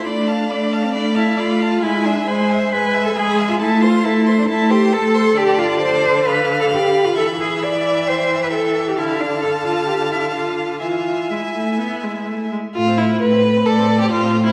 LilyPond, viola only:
\new Staff \with { instrumentName = "Viola" } { \time 4/4 \key a \minor \tempo 4 = 134 a4 a4 a4 a4 | gis4 gis4 gis4 gis4 | a4 a4 a4 a4 | d1 |
e1 | d1 | e4 gis8 a8 b8 gis8 a8 gis8 | a16 c'16 a16 c'16 a16 c'16 a16 c'16 a16 c'16 a16 c'16 a16 c'16 a16 c'16 | }